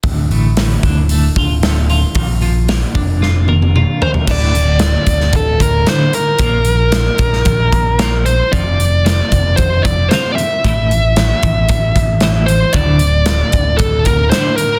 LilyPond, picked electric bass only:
\new Staff \with { instrumentName = "Picked electric bass" } { \clef bass \time 4/4 \key d \minor \tempo 4 = 113 d,,8 a,,4 d,,4 d,,4. | bes,,4. f,,2 r8 | d,,4. d,,8 d,,8 d,,8 r4 | bes,,4. bes,,8 bes,,8 bes,,4. |
f,,4. f,,8 f,,8 f,,8 r4 | a,,4. a,,8 a,,8 a,,4. | d,,4. d,,8 d,,8 d,,8 r4 | }